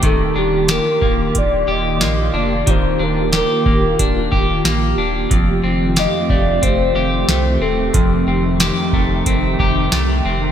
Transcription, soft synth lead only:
X:1
M:4/4
L:1/8
Q:1/4=91
K:Fmix
V:1 name="Soft synth lead"
A G B2 d e2 d | c B B3 z3 | z2 e d c3 A- | A z6 z |]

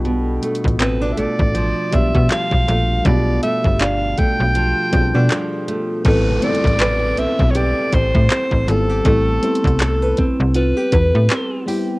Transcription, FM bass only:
X:1
M:4/4
L:1/16
Q:"Swing 16ths" 1/4=80
K:Am
V:1 name="FM bass" clef=bass
B,,,2 z A,,,3 A,,, A,,,2 z B,,, B,, z B,,, _B,,,2 | B,,,2 z G,,,3 B,,, B,,,2 z B,,, B,, z4 | A,,,2 z A,,,3 B,,, B,,,2 z A,,, A,, z A,,, ^G,,,2 | A,,,2 z C,,3 C,, C,,2 z E,, A,, z4 |]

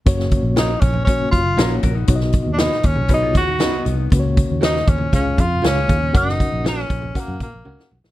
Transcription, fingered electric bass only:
X:1
M:4/4
L:1/16
Q:1/4=118
K:F#
V:1 name="Fingered electric bass" clef=bass
F,,,3 A,,,3 A,,,4 F,,,2 A,,,2 A,,,2 | B,,,3 D,,2 z D,, B,,,3 D,,2 C,,2 ^B,,,2 | C,,3 D,,3 D,,2 C,,2 E,,2 C,,2 D,,2 | F,,,3 A,,,3 A,,,2 z F,, A,, A,,, C,, z B,,, A,,, |]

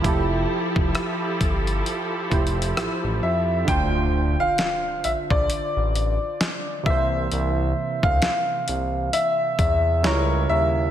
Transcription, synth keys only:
X:1
M:4/4
L:1/8
Q:"Swing 16ths" 1/4=66
K:Dm
V:1 name="Synth keys"
[F,EGA]4- [F,EGA] [F,EGc]3 | [D,DFc]6- [D,DFc] [C,E,B,c]- | [C,E,B,c]6 [^C,G,E^A]2 |]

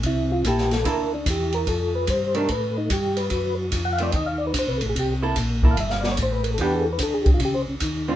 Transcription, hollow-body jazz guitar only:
X:1
M:4/4
L:1/8
Q:"Swing" 1/4=147
K:C
V:1 name="Hollow-body jazz guitar"
z2 [_B,EA] z [B,EA] z3 | z3 [_E,A,D] z4 | z3 [^D,A,C] z4 | z [_B,EA] z [B,EA] z4 |
[E,B,DG] z6 [D,A,C^E] |]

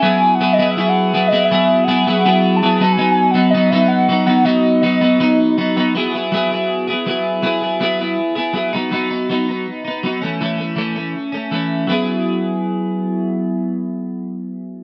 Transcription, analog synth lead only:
X:1
M:4/4
L:1/8
Q:1/4=162
K:E
V:1 name="Analog synth lead"
g2 f d e f2 d | e2 f4 a2 | g g f d e f2 f | d2 d4- d z |
z8 | z8 | z8 | z8 |
z8 | z8 |]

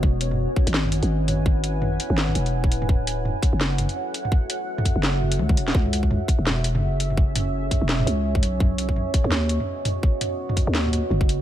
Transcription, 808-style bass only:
X:1
M:4/4
L:1/16
Q:"Swing 16ths" 1/4=168
K:C#m
V:1 name="808-style bass" clef=bass
E,,,4- E,,, z2 G,,,4 G,,,4- G,,,- | G,,,6 z G,,,3 E,,,4 =D,,,2- | =D,,,4- D,,, z2 F,,,4 z4 z | z6 z F,,,4- F,,, =D,,2 E,,,2 |
C,,4- C,, z2 E,,,4 F,,,4- F,,,- | F,,,6 z E,,,3 C,,4 B,,,2- | B,,,4- B,,, z2 D,,4 z4 z | z6 z D,,4 z F,,,4 |]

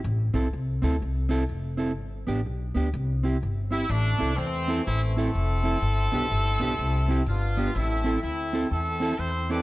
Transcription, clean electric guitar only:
X:1
M:4/4
L:1/8
Q:"Swing" 1/4=125
K:Am
V:1 name="Clean electric guitar"
z [CEA] z [CEA] z [CEA] z [CEA] | z [B,DG] z [B,DG] z [CEG] z [CEG] | z [CEA] z [CEA] z [CEA] z [CEA] | z [B,DG] z [B,DG] z [CEG] z [B,DG] |
z [CEA] z [CEA] z [CEA] z [CEA] |]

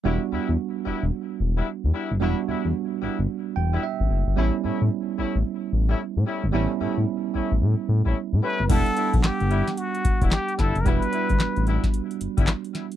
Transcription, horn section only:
X:1
M:4/4
L:1/16
Q:"Swing 16ths" 1/4=111
K:Edor
V:1 name="Horn section"
[G,B,DE] z [G,B,DE] z3 [G,B,DE] z4 [G,B,DE] z2 [G,B,DE] z | [G,B,DE] z [G,B,DE] z3 [G,B,DE] z4 [G,B,DE] z4 | [G,A,CE] z [G,A,CE] z3 [G,A,CE] z4 [G,A,CE] z2 [G,A,CE] z | [G,A,CE] z [G,A,CE] z3 [G,A,CE] z4 [G,A,CE] z2 [G,A,CE] z |
[G,B,DE] z [G,B,DE] z3 [G,B,DE] z4 [G,B,DE] z2 [G,B,DE] z | [G,B,DE] z [G,B,DE] z3 [G,B,DE] z4 [G,B,DE] z4 |]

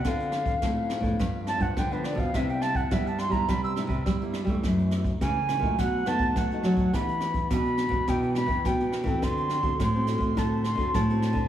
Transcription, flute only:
X:1
M:4/4
L:1/16
Q:1/4=105
K:Em
V:1 name="Flute"
=f6 z4 a ^f g B d =f | e g a f e a c' ^a b e' z6 | z4 ^g4 f2 a2 f4 | b4 b4 g2 b2 g4 |
c'4 c'4 a2 c'2 a4 |]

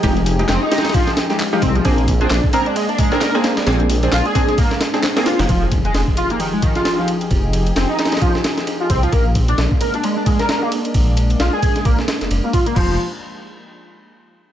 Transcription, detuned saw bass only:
X:1
M:4/4
L:1/16
Q:"Swing 16ths" 1/4=132
K:Fdor
V:1 name="Detuned saw bass" clef=bass
F,,,4 F,,, z8 z C,, z | B,,,4 B,,, z8 z3 | B,,,4 B,,, z8 z2 F,,, | F,,,4 F,,, z8 z3 |
F,,,4 F,,, z8 z C,, z | B,,,4 B,,, z8 z3 | B,,,4 B,,, z3 B,,, z2 F,,, F,,, z3 | F,,,2 z12 z2 |]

